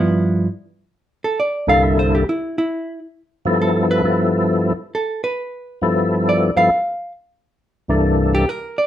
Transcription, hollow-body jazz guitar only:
X:1
M:4/4
L:1/8
Q:"Swing" 1/4=135
K:C
V:1 name="Hollow-body jazz guitar"
[G,,F,B,E]2 z3 A d f | (3e c G E E2 z3 | A B3 z2 A B- | B2 z2 d f3 |
z4 z G _B d |]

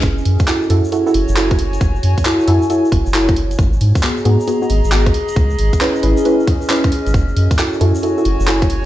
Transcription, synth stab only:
X:1
M:4/4
L:1/16
Q:"Swing 16ths" 1/4=135
K:C#m
V:1 name="Synth stab"
z4 [EFA] z [EFA] z [EFA] [EFA] z2 [EFA] z3 | z4 [EFA]2 [EFA] z [EFA] z3 [EFA] z3 | z4 [B,FG] z [B,FG] z [B,FG] [B,FG] z2 [B,FG] z3 | z4 [CEB]2 [CEB] z [CEB] z3 [CEB] z3 |
z4 [EFA] z [EFA] z [EFA] [EFA] z2 [EFA] z3 |]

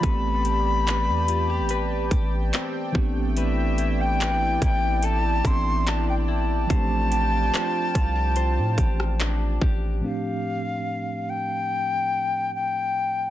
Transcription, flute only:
X:1
M:4/4
L:1/16
Q:1/4=72
K:Flyd
V:1 name="Flute"
b8- b3 z4 z | e3 g3 g2 a2 c'2 a g a2- | a12- a2 z2 | f6 g6 g4 |]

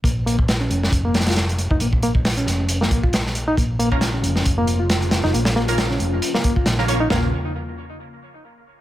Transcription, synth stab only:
X:1
M:4/4
L:1/16
Q:"Swing 16ths" 1/4=136
K:Bbm
V:1 name="Synth stab"
z16 | z16 | z3 [B,DFB] z12 | z3 [B,DFB] z8 z [B,DFB] [B,DFd] z |
[B,DFB]2 z12 z2 |]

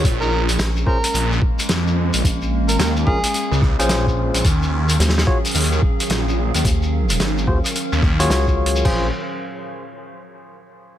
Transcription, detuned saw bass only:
X:1
M:4/4
L:1/16
Q:"Swing 16ths" 1/4=109
K:Bbm
V:1 name="Detuned saw bass" clef=bass
B,,,4 z4 B,,,2 z2 F,,3 B,,, | z4 E,,2 z3 D,,2 B,,,4 B,,, | E,,4 z4 E,,2 z2 B,,,3 E,, | z4 A,,,2 z3 E,,3 z4 |
B,,,2 z12 z2 |]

